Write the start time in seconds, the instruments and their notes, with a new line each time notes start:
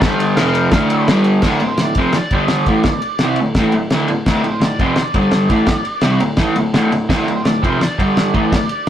0.00 overdriven electric guitar G2 D3, lead electric guitar C5 A5, kick, snare, ride
0.04 overdriven electric guitar G3
0.18 lead electric guitar C5 A5, ride
0.36 overdriven electric guitar F2 C3 F3, lead electric guitar F5, snare, ride
0.55 ride
0.71 overdriven electric guitar D2 A2 D3, kick, snare, ride
0.90 ride
1.08 overdriven electric guitar G2 D3 G3, snare, ride
1.24 ride
1.42 overdriven electric guitar D2 A2 D3, lead electric guitar G4, kick, snare, crash
1.60 overdriven electric guitar D2 A2, lead electric guitar C5, ride
1.77 overdriven electric guitar A2, snare, ride
1.82 overdriven electric guitar D2, lead electric guitar D5
1.95 overdriven electric guitar F2 C3 F3, kick, ride
1.99 lead electric guitar C5
2.13 lead electric guitar D5, muted overdriven electric guitar stroke, snare, ride
2.31 overdriven electric guitar G2 D3 G3, lead electric guitar D5, kick, ride
2.48 snare, ride
2.66 overdriven electric guitar A2 E3 A3, kick, ride
2.83 overdriven electric guitar D2, kick, snare, ride
2.88 overdriven electric guitar A2
3.02 ride
3.19 snare, ride
3.23 overdriven electric guitar C3 G3 C4
3.36 ride
3.41 overdriven electric guitar D2 A2
3.55 overdriven electric guitar A2, kick, snare, ride
3.59 overdriven electric guitar E3 A3
3.72 overdriven electric guitar D2 A2, ride
3.90 overdriven electric guitar D2 A2 D3, snare, ride
4.08 overdriven electric guitar D2 A2, ride
4.26 overdriven electric guitar D2 A2 D3, lead electric guitar G4, kick, snare, crash
4.44 overdriven electric guitar D2 A2, lead electric guitar C5, ride
4.61 overdriven electric guitar D2 A2, lead electric guitar D5, snare, ride
4.79 overdriven electric guitar F2 C3 F3, kick, ride
4.85 lead electric guitar C5
4.96 muted overdriven electric guitar stroke, snare, ride
5.02 lead electric guitar D5
5.14 overdriven electric guitar G2 D3 G3, lead electric guitar D5, kick, ride
5.31 snare, ride
5.50 overdriven electric guitar A2 E3 A3, kick, ride
5.67 overdriven electric guitar D2 A2, kick, snare, ride
5.85 ride
6.01 overdriven electric guitar C3 G3 C4, snare, ride
6.20 overdriven electric guitar D2 A2, ride
6.37 overdriven electric guitar A2 E3 A3, kick, snare, ride
6.56 overdriven electric guitar D2 A2, ride
6.74 overdriven electric guitar D2 A2 D3, snare, ride
6.91 overdriven electric guitar D2 A2, ride
7.09 overdriven electric guitar D2 A2 D3, lead electric guitar G4, kick, snare, crash
7.27 overdriven electric guitar D2 A2, lead electric guitar C5, ride
7.44 overdriven electric guitar D2 A2, lead electric guitar D5, snare, ride
7.62 overdriven electric guitar F2 C3 F3, lead electric guitar C5, kick, ride
7.81 lead electric guitar D5, muted overdriven electric guitar stroke, snare, ride
7.99 overdriven electric guitar G2 D3 G3, lead electric guitar D5, kick, ride
8.17 snare, ride
8.34 overdriven electric guitar A2 E3 A3, kick, ride
8.52 overdriven electric guitar D2 A2, kick, snare, ride
8.69 ride